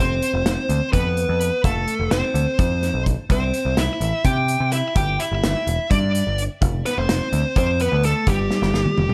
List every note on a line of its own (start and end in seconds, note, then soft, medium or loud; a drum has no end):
0.00 0.19 F1 loud
0.00 0.89 C4 medium
0.00 0.89 C5 medium
0.22 closed hi-hat medium
0.34 0.44 F1 medium
0.45 0.56 F1 medium
0.45 snare loud
0.45 closed hi-hat medium
0.69 0.80 D2 medium
0.69 closed hi-hat medium
0.93 1.24 F2 medium
0.93 1.60 B3 medium
0.93 1.60 B4 medium
0.93 kick loud
0.93 closed hi-hat medium
1.17 closed hi-hat medium
1.29 1.50 F2 medium
1.41 closed hi-hat medium
1.64 1.85 F1 loud
1.64 2.09 A3 medium
1.64 2.09 A4 medium
1.64 kick loud
1.64 closed hi-hat medium
1.88 closed hi-hat medium
2.00 2.10 F1 medium
2.11 2.22 F1 medium
2.11 3.03 C4 medium
2.11 3.03 C5 medium
2.11 snare loud
2.11 closed hi-hat medium
2.34 2.45 D2 medium
2.34 closed hi-hat medium
2.59 2.90 F2 medium
2.59 kick loud
2.59 closed hi-hat medium
2.83 snare soft
2.83 closed hi-hat medium
2.94 3.15 B1 medium
3.06 kick medium
3.06 closed hi-hat medium
3.30 3.51 C2 loud
3.30 3.75 C4 medium
3.30 3.80 C5 medium
3.30 kick loud
3.30 closed hi-hat medium
3.54 closed hi-hat medium
3.65 3.76 C2 medium
3.77 3.88 C2 medium
3.77 4.22 E4 medium
3.77 4.27 E5 medium
3.77 snare loud
3.77 closed hi-hat medium
4.00 4.11 A1 medium
4.00 closed hi-hat medium
4.25 4.56 C3 medium
4.25 4.69 G4 medium
4.25 4.69 G5 medium
4.25 kick loud
4.25 closed hi-hat medium
4.48 closed hi-hat medium
4.60 4.81 C3 medium
4.72 4.95 E4 medium
4.72 4.95 E5 medium
4.72 closed hi-hat medium
4.96 5.16 G1 loud
4.96 5.18 G4 medium
4.96 5.20 G5 medium
4.96 kick loud
4.96 closed hi-hat medium
5.19 5.86 E4 medium
5.19 5.91 E5 medium
5.19 closed hi-hat medium
5.32 5.42 G1 medium
5.43 5.54 G1 medium
5.43 snare loud
5.43 closed hi-hat medium
5.67 5.77 E1 medium
5.67 closed hi-hat medium
5.90 6.21 G2 medium
5.90 6.40 D4 medium
5.90 6.40 D5 medium
5.90 kick medium
5.90 closed hi-hat medium
6.15 closed hi-hat medium
6.27 6.47 G1 medium
6.38 closed hi-hat medium
6.61 6.82 F1 loud
6.61 kick loud
6.61 closed hi-hat medium
6.85 6.98 B3 medium
6.85 6.98 B4 loud
6.85 snare soft
6.85 closed hi-hat medium
6.98 7.08 F1 medium
6.98 7.57 C4 medium
6.98 7.57 C5 medium
7.09 7.20 F1 medium
7.09 snare loud
7.09 closed hi-hat medium
7.33 7.43 D2 medium
7.33 closed hi-hat medium
7.56 7.87 F2 medium
7.56 7.79 C4 medium
7.56 7.81 C5 medium
7.56 kick loud
7.56 closed hi-hat medium
7.80 8.03 B3 medium
7.80 8.05 B4 medium
7.80 closed hi-hat medium
7.92 8.12 D2 medium
8.03 8.26 A3 medium
8.03 8.29 A4 medium
8.03 closed hi-hat medium
8.27 8.48 G1 loud
8.27 9.14 G3 medium
8.27 9.14 G4 medium
8.27 kick loud
8.27 closed hi-hat medium
8.51 snare medium
8.62 8.73 G1 medium
8.62 snare soft
8.74 8.84 G1 medium
8.74 snare medium
8.86 high tom medium
8.98 9.08 F1 medium
8.98 high tom medium
9.09 mid tom medium